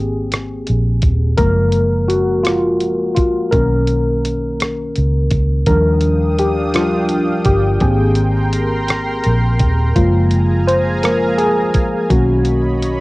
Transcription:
Already playing: G#1 A#3 C4 G4 G#4
0.32 cross-stick, closed hi-hat
0.67 A#1, closed hi-hat
1.02 D#1, kick, closed hi-hat
1.37 F#1 F3 G#3 A#3 A#4, kick, closed hi-hat
1.72 closed hi-hat
2.08 F#4, closed hi-hat
2.43 F4, cross-stick, closed hi-hat
2.80 closed hi-hat
3.15 F4, kick, closed hi-hat
3.19 G#1
3.51 B1 D#3 A#3 C#4 A#4, kick, closed hi-hat
3.87 closed hi-hat
4.25 closed hi-hat
4.60 cross-stick, closed hi-hat
4.95 C#2, closed hi-hat
5.30 C#2, kick, closed hi-hat
5.66 D#2 F3 G3 D4 A#4 F5 G5 D#6, kick, closed hi-hat
6.01 closed hi-hat
6.39 G4, closed hi-hat
6.74 F3 G3 D4 F4, cross-stick, closed hi-hat
7.09 closed hi-hat
7.45 G1 G4, kick, closed hi-hat
7.80 G#1 A#3 C4 G4 G#4 A#4 A#5 C6, kick, closed hi-hat
8.15 closed hi-hat
8.53 closed hi-hat
8.89 cross-stick, closed hi-hat
9.24 A#1, closed hi-hat
9.60 D#1, kick, closed hi-hat
9.96 F#1 F3 G#3 A#3 F4 G#4 F5 G#5 A#5, kick, closed hi-hat
10.31 closed hi-hat
10.67 C5, closed hi-hat
11.03 F3 G#3 A#3 A#4, cross-stick, closed hi-hat
11.38 G#4, closed hi-hat
11.74 G#1, kick, closed hi-hat
12.10 B1 D#3 A#3 C#4 F#4 C#5 D#5 B5, kick, closed hi-hat
12.45 closed hi-hat
12.82 closed hi-hat

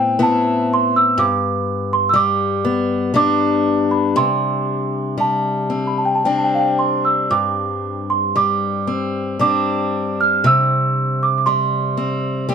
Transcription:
Already playing: A2 B3 C4 G5
0.19 B3 C4 E4 A5
0.73 C6
0.96 E6
1.18 G2 D6
1.93 C6
2.09 E6
2.14 G3 D6
2.65 B3
3.14 G3 B3 D4 D6
3.91 B5
4.16 C3 C6
5.18 G3 A5
5.70 C4
5.87 B5
5.98 A5
6.05 G5
6.15 A5
6.25 G3 C4 D4 G5
6.38 A5
6.44 G5
6.55 F5
6.59 G5
6.79 C6
7.05 E6
7.31 G2 D6
8.10 C6
8.36 G3 D6
8.87 C4
9.39 G3 C4 D4 D6
10.21 F6
10.44 C3 E6
11.23 D6
11.38 D6
11.46 G3 C6
11.97 C4
12.49 G3 C4 G4

